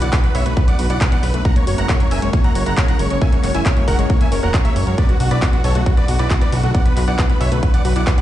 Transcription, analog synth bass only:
0.02 0.10 B1 medium
0.35 0.43 B1 loud
0.46 0.54 B1 medium
0.79 0.87 B1 medium
0.90 0.99 B1 medium
1.23 1.32 B1 loud
1.34 1.43 B1 medium
1.67 1.76 F#1 medium
1.78 1.87 F#1 medium
2.11 2.20 F#1 loud
2.22 2.31 F#1 medium
2.55 2.64 F#1 loud
2.67 2.75 F#1 medium
3.00 3.08 F#1 loud
3.11 3.19 F#1 medium
3.44 3.52 F#1 medium
3.55 3.63 F#1 medium
3.88 3.96 F#1 loud
3.99 4.07 F#1 medium
4.32 4.40 F#1 medium
4.43 4.51 E1 medium
4.76 4.85 F#1 medium
4.87 4.96 F#2 medium
5.20 5.29 B1 loud
5.31 5.40 B1 medium
5.64 5.73 B1 loud
5.75 5.84 B1 medium
6.08 6.17 B1 loud
6.20 6.28 B1 medium
6.53 6.61 B1 loud
6.64 6.72 B1 medium
6.97 7.05 B1 medium
7.08 7.16 B1 medium
7.41 7.49 B1 loud
7.52 7.60 B1 medium
7.85 7.93 B1 medium
7.96 8.04 B1 medium

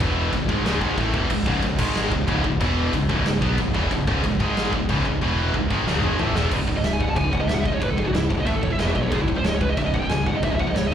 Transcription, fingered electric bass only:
0.00 0.31 E1 loud
0.33 0.48 C#1 medium
0.49 0.64 G#1 loud
0.65 0.80 C#1 loud
0.81 0.97 G#1 loud
0.97 1.13 A1 loud
1.14 1.29 E1 loud
1.30 1.45 C#1 medium
1.46 1.62 C#1 loud
1.63 1.78 C#1 medium
1.79 2.09 G#1 loud
2.11 2.27 C#1 medium
2.28 2.43 C#1 loud
2.44 2.59 C#1 medium
2.60 2.91 E1 loud
2.93 3.08 C#1 medium
3.09 3.24 C#1 loud
3.25 3.41 C#1 medium
3.42 3.57 B1 loud
3.58 3.73 C#1 medium
3.75 3.90 E1 medium
3.91 4.06 C#1 medium
4.07 4.22 C#1 loud
4.24 4.39 C#1 medium
4.40 4.70 G#1 loud
4.73 4.87 C#1 medium
4.89 5.04 C#1 loud
5.05 5.20 C#1 medium
5.22 5.51 E1 loud
5.54 5.69 C#1 medium
5.70 5.85 G#1 loud
5.87 6.01 C#1 loud
6.02 6.17 G#1 medium
6.18 6.32 A1 loud
6.33 6.49 E1 medium
6.51 6.65 C#1 loud
6.68 6.82 C#1 medium
6.83 7.12 C#1 medium
7.16 7.30 C#1 loud
7.33 7.47 C#1 medium
7.50 7.64 C#1 loud
7.65 7.80 G#1 loud
7.81 7.96 C#1 medium
7.98 8.12 C#1 medium
8.14 8.28 C#1 medium
8.30 8.45 C#1 medium
8.47 8.61 A1 loud
8.63 8.77 D#1 medium
8.79 8.93 E1 medium
8.96 9.10 B1 medium
9.12 9.26 C#1 medium
9.28 9.42 C#1 medium
9.45 9.73 C#1 loud
9.77 9.91 C#1 loud
9.94 10.08 C#1 medium
10.11 10.25 C#1 loud
10.27 10.41 G#1 medium
10.43 10.57 C#1 loud
10.60 10.74 C#1 medium
10.77 10.91 C#1 medium

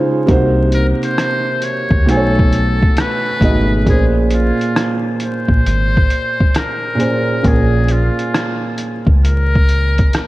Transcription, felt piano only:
0.00 0.23 C#3 medium
0.00 0.23 G#3 medium
0.00 0.24 D#4 medium
0.00 0.24 F4 medium
0.00 0.25 C5 medium
0.26 1.82 C3 medium
0.26 1.83 A#3 medium
0.26 1.84 D#4 medium
0.26 1.84 F#4 medium
0.31 1.85 C5 loud
2.06 3.26 B2 medium
2.06 3.27 A3 medium
2.06 3.27 D#4 medium
2.06 3.28 G#5 medium
2.11 2.18 C5 medium
2.17 3.32 C#5 medium
3.40 3.80 B2 medium
3.40 3.81 A3 medium
3.40 3.82 D#4 medium
3.40 3.82 G#4 medium
3.44 3.83 D#5 medium
3.85 5.41 A#2 medium
3.85 5.42 A#3 medium
3.85 5.42 C#4 medium
3.85 5.43 G#4 medium
3.90 5.43 C5 medium
6.95 7.37 A#2 medium
6.95 7.38 A#3 medium
6.95 7.38 C#4 medium
6.95 7.39 G#4 medium
7.00 7.40 C5 medium
7.43 8.99 A#2 medium
7.43 8.99 A#3 medium
7.43 9.00 C#4 medium
7.43 9.01 G#4 medium
7.47 9.01 A#4 medium

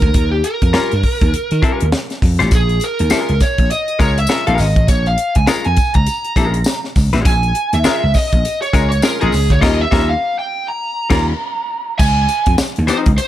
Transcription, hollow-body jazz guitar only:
0.73 0.91 G3 medium
0.73 0.91 C#4 medium
0.73 0.92 F4 medium
0.73 0.92 A#4 loud
1.62 1.84 G3 medium
1.62 1.85 C#4 medium
1.62 1.85 F4 medium
1.62 1.85 A#4 medium
2.39 2.52 G3 medium
2.39 2.52 C#4 medium
2.39 2.51 F4 medium
2.39 2.51 C5 medium
3.11 3.33 G#3 medium
3.11 3.33 C#4 medium
3.11 3.33 F4 medium
3.11 3.33 A#4 medium
3.99 4.17 G#3 medium
3.99 4.17 C#4 medium
3.99 4.18 F4 medium
3.99 4.18 A#4 medium
4.29 4.43 G#3 medium
4.29 4.43 C#4 medium
4.29 4.43 F4 medium
4.29 4.44 A#4 medium
4.47 4.66 G#3 medium
4.47 4.65 C#4 medium
4.47 4.65 F4 medium
4.47 4.65 A#4 loud
5.47 5.65 G#3 medium
5.47 5.66 C#4 medium
5.47 5.66 F4 medium
5.47 5.66 A#4 medium
6.36 6.58 G#3 medium
6.36 6.59 C#4 medium
6.36 6.59 F4 medium
6.36 6.59 A#4 medium
7.13 7.32 G#3 medium
7.13 7.32 C#4 medium
7.13 7.32 F4 medium
7.13 7.31 C5 medium
7.84 8.02 G#3 loud
7.84 8.02 C#4 loud
7.84 8.03 F4 loud
7.84 8.03 A#4 loud
8.73 8.91 G#3 loud
8.73 8.91 C#4 medium
8.73 8.91 F4 medium
8.73 8.92 A#4 medium
9.03 9.17 G#3 medium
9.03 9.17 C#4 medium
9.03 9.17 F4 medium
9.03 9.17 A#4 medium
9.21 9.33 G#3 medium
9.21 9.33 C#4 medium
9.21 9.33 F4 medium
9.21 9.33 A#4 medium
9.61 9.83 G3 loud
9.61 9.83 C#4 loud
9.61 9.83 F4 loud
9.61 9.84 A#4 loud
9.91 10.13 G3 loud
9.91 10.13 C#4 loud
9.91 10.13 F4 loud
9.91 10.14 A#4 loud
11.10 11.31 G3 medium
11.10 11.31 C#4 medium
11.10 11.32 F4 loud
11.10 11.32 A#4 medium
12.87 13.09 F3 medium
12.87 13.10 C4 medium
12.87 13.10 D#4 medium
12.87 13.10 G#4 medium

